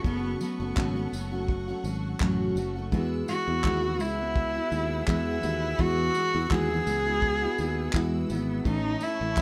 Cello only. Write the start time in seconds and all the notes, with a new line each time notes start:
0.06 B3
0.41 B3
3.29 F#4
4.01 E4
5.09 E4
5.80 F#4
6.52 G#4
7.95 G#3
8.30 B3
8.66 D#4
9.03 E4